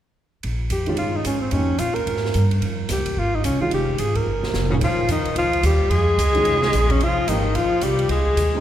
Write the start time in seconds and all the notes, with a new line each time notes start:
0.43 A#1, ride
0.70 F2 G4, hi-hat pedal, ride
0.86 D#3 G#3 C#4 F4, ride
0.97 G2 F4, ride
1.16 D#4
1.25 G#2 C#4, hi-hat pedal, ride
1.41 C4
1.51 F2 F3 A#3 C#4 D#4 G4, ride
1.78 A#2 F4, hi-hat pedal, ride
1.94 A#4, ride
2.07 G#2, ride
2.16 snare
2.25 snare
2.34 G2, hi-hat pedal, ride
2.51 ride
2.62 F2, ride
2.89 C#2 G4, snare, hi-hat pedal, ride
3.06 kick, ride
3.17 G#1 F4
3.35 D#4
3.44 C2 C#4, hi-hat pedal, ride
3.61 D#3 G#3 C#4 F4, muted upright bass stroke
3.71 F1 G4, ride
3.98 G#1 G#4, hi-hat pedal, ride
4.15 A#4, kick, ride
4.26 G1
4.43 snare
4.54 F1, snare, hi-hat pedal
4.69 A#2 C#3 D#3 G#3 C#4 F4, floor tom
4.74 C#4
4.81 A#1 F3 F4, kick, ride
5.08 F2 D#3 D#4, hi-hat pedal, ride
5.25 muted upright bass stroke, ride
5.36 C#2 F3 F4, ride
5.53 ride
5.63 D#2 G3 G4, hi-hat pedal, ride
5.90 F2 G#3 G#4, ride
6.18 C#2, hi-hat pedal, ride
6.35 D#3 G#3 C#4 F4, ride
6.45 C2, ride
6.62 snare
6.73 A#1, hi-hat pedal, ride
6.89 C#3 C#4, kick, ride
7.00 F1 F3 F4, ride
7.27 G#1 D#3 F3 A#3 D#4 G4, hi-hat pedal, ride
7.55 A#1 F3 F4, ride
7.81 C2 G3 G4, hi-hat pedal, ride
7.99 ride
8.09 C#2 G#3 G#4, ride
8.36 D#2, hi-hat pedal, ride
8.55 C#3 G3 C4 D#4